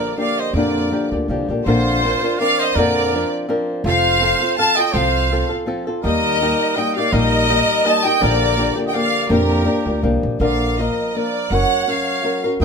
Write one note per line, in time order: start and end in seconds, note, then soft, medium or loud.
0.00 0.55 D3 medium
0.00 0.16 F3 medium
0.00 0.18 A#3 medium
0.00 0.17 D4 medium
0.00 0.17 G4 medium
0.00 0.15 A#4 medium
0.00 0.15 D5 medium
0.16 0.56 F3 medium
0.16 0.56 A#3 medium
0.16 0.56 D4 medium
0.16 0.55 G4 medium
0.16 0.37 F5 medium
0.20 0.41 D5 medium
0.39 0.56 C5 medium
0.39 0.55 D#5 medium
0.53 0.91 F2 medium
0.53 0.92 A#2 medium
0.53 1.67 D3 medium
0.53 0.90 F3 medium
0.53 0.91 A#3 medium
0.53 0.92 D4 medium
0.53 0.91 G4 medium
0.53 1.09 A#4 medium
0.53 1.08 D5 medium
0.90 1.11 F3 medium
0.90 1.12 A#3 soft
0.90 1.11 D4 medium
0.90 1.11 G4 medium
1.12 1.27 D2 medium
1.12 1.28 F3 soft
1.12 1.28 A#3 soft
1.12 1.29 D4 soft
1.12 1.30 G4 soft
1.28 1.47 C2 medium
1.28 1.50 F3 medium
1.28 1.49 A#3 soft
1.28 1.49 D4 medium
1.28 1.48 G4 medium
1.48 1.64 A#1 medium
1.48 1.66 F3 soft
1.48 1.67 A#3 soft
1.48 1.66 D4 soft
1.48 1.67 G4 soft
1.65 2.14 A#1 medium
1.65 2.03 A#2 medium
1.65 2.03 D3 medium
1.65 2.03 F3 medium
1.65 2.04 C4 medium
1.65 2.03 D4 medium
1.65 2.41 F4 medium
1.65 2.04 A#4 medium
1.65 2.35 C5 medium
2.03 2.23 F3 medium
2.03 2.22 C4 medium
2.03 2.23 D4 medium
2.03 2.22 A#4 medium
2.23 2.39 F3 soft
2.23 2.39 C4 soft
2.23 2.40 D4 soft
2.23 2.40 A#4 medium
2.40 2.78 F3 medium
2.40 2.77 C4 medium
2.40 2.77 D4 medium
2.40 2.77 A#4 medium
2.40 2.61 D5 medium
2.40 2.59 F5 loud
2.59 2.77 C5 medium
2.59 2.77 D#5 loud
2.75 3.22 F2 medium
2.75 3.13 A#2 medium
2.75 3.13 D3 medium
2.75 3.14 F3 medium
2.75 3.14 C4 medium
2.75 3.13 D4 medium
2.75 3.31 A#4 medium
2.75 3.13 A#4 medium
2.75 3.32 D5 loud
3.14 3.48 F3 medium
3.14 3.48 C4 medium
3.14 3.48 D4 medium
3.14 3.49 A#4 medium
3.48 3.85 F3 medium
3.48 3.85 C4 medium
3.48 3.85 D4 medium
3.48 3.85 A#4 medium
3.84 4.31 F1 medium
3.84 4.19 F3 medium
3.84 4.20 C4 medium
3.84 4.21 F4 medium
3.84 4.21 A4 medium
3.84 4.54 C5 medium
3.84 4.54 F5 loud
4.21 4.40 F3 medium
4.21 4.40 C4 medium
4.21 4.40 F4 medium
4.21 4.39 A4 medium
4.41 4.57 C4 soft
4.41 4.58 F4 soft
4.41 4.57 A4 soft
4.58 4.77 F3 soft
4.58 4.77 C4 medium
4.58 4.77 F4 medium
4.58 4.76 A4 medium
4.58 4.77 F5 medium
4.58 4.76 A5 loud
4.75 4.92 C4 soft
4.75 4.94 F4 soft
4.75 4.93 A4 soft
4.75 4.95 D#5 medium
4.75 4.94 G5 loud
4.93 5.41 C2 medium
4.93 5.30 F3 medium
4.93 5.30 C4 medium
4.93 5.30 F4 medium
4.93 5.30 A4 medium
4.93 5.49 C5 medium
4.93 5.50 F5 medium
5.31 5.50 F3 medium
5.31 5.50 C4 medium
5.31 5.49 F4 soft
5.31 5.48 A4 medium
5.49 5.66 C4 soft
5.49 5.66 F4 soft
5.49 5.67 A4 medium
5.66 5.87 F3 medium
5.66 5.87 C4 medium
5.66 5.87 F4 medium
5.66 5.86 A4 medium
5.87 6.04 C4 soft
5.87 6.05 F4 soft
5.87 6.04 A4 medium
6.03 6.52 D#2 medium
6.03 6.41 D#3 medium
6.03 6.40 G3 medium
6.03 6.41 A#3 medium
6.03 6.41 D#4 medium
6.03 6.42 G4 medium
6.03 6.78 A#4 medium
6.03 6.74 D#5 loud
6.40 6.76 G3 medium
6.40 6.77 A#3 medium
6.40 6.76 D#4 medium
6.40 6.78 G4 medium
6.76 6.97 G3 medium
6.76 6.97 A#3 medium
6.76 6.97 D#4 medium
6.76 6.95 G4 medium
6.76 6.96 D#5 medium
6.76 6.97 G5 medium
6.96 7.12 A#3 soft
6.96 7.12 D#4 soft
6.96 7.12 G4 medium
6.96 7.14 D5 medium
6.96 7.12 F5 medium
7.13 7.60 A#1 medium
7.13 7.50 D#3 medium
7.13 7.48 G3 medium
7.13 7.49 A#3 medium
7.13 7.49 D#4 medium
7.13 7.50 G4 medium
7.13 7.88 A#4 medium
7.13 7.86 D#5 loud
7.49 7.84 G3 medium
7.49 7.84 A#3 medium
7.49 7.84 D#4 medium
7.49 7.85 G4 medium
7.84 8.05 G3 medium
7.84 8.04 A#3 medium
7.84 8.04 D#4 medium
7.84 8.04 G4 medium
7.84 8.06 D#5 medium
7.84 8.06 A5 loud
8.05 8.19 A#3 soft
8.05 8.21 D#4 soft
8.05 8.20 G4 medium
8.05 8.24 D#5 medium
8.05 8.22 G5 loud
8.20 8.69 A#1 medium
8.20 8.57 A#2 medium
8.20 9.29 D3 medium
8.20 8.57 F3 medium
8.20 8.57 A#3 medium
8.20 8.57 D4 medium
8.20 8.57 G4 medium
8.20 8.78 A#4 medium
8.20 8.78 D5 loud
8.57 8.77 F3 soft
8.57 8.76 A#3 medium
8.57 8.76 D4 medium
8.57 8.74 G4 medium
8.76 8.92 F3 soft
8.76 8.93 A#3 soft
8.76 8.94 D4 soft
8.76 8.93 G4 medium
8.86 8.96 D#5 medium
8.86 8.94 G5 medium
8.94 9.29 F3 medium
8.94 9.30 A#3 medium
8.94 9.29 D4 medium
8.94 9.29 G4 medium
8.94 9.30 D5 medium
8.94 9.30 F5 loud
9.29 9.66 F2 medium
9.29 9.66 A#2 medium
9.29 9.66 D3 medium
9.29 9.63 F3 medium
9.29 9.64 A#3 medium
9.29 9.64 D4 medium
9.29 9.65 G4 medium
9.29 10.01 G4 medium
9.29 10.00 A#4 medium
9.65 9.85 F3 soft
9.65 9.85 A#3 medium
9.65 9.85 D4 medium
9.65 9.85 G4 medium
9.86 10.01 D2 medium
9.86 10.01 F3 soft
9.86 10.02 A#3 soft
9.86 10.02 D4 soft
9.86 10.03 G4 soft
10.02 10.21 C2 medium
10.02 10.40 F3 medium
10.02 10.40 A#3 medium
10.02 10.40 D4 medium
10.02 10.41 G4 medium
10.23 10.39 A#1 medium
10.40 10.88 A#1 medium
10.40 10.78 A#2 medium
10.40 10.78 D3 medium
10.40 10.77 F3 medium
10.40 10.79 A#3 medium
10.40 10.78 D4 medium
10.40 10.79 A#4 medium
10.40 10.83 D5 medium
10.40 10.76 F5 medium
10.78 11.14 F3 soft
10.78 11.15 A#3 medium
10.78 11.16 A#4 medium
10.78 11.17 A#4 medium
10.78 11.15 D#5 medium
11.15 11.51 F3 medium
11.15 11.52 A#3 soft
11.15 11.52 D4 medium
11.15 11.52 A#4 soft
11.15 11.56 A#4 medium
11.15 11.52 D5 medium
11.50 11.63 F#1 medium
11.50 11.86 F#3 medium
11.50 11.86 C#4 medium
11.50 11.87 F#4 medium
11.50 11.87 A#4 medium
11.50 11.88 F#5 loud
11.54 11.88 C#5 medium
11.87 12.22 F#3 medium
11.87 12.23 C#4 medium
11.87 12.23 F#4 medium
11.87 12.24 A#4 medium
11.87 12.43 C#5 medium
11.87 12.45 F5 medium
12.23 12.43 F#3 soft
12.23 12.43 C#4 medium
12.23 12.44 F#4 medium
12.23 12.43 A#4 medium
12.44 12.61 C#4 soft
12.44 12.61 F#4 medium
12.44 12.60 A#4 medium
12.60 12.65 D#2 medium
12.60 12.65 D#3 medium
12.60 12.65 G3 medium
12.60 12.65 A#3 medium
12.60 12.65 D#4 medium
12.60 12.65 D#5 medium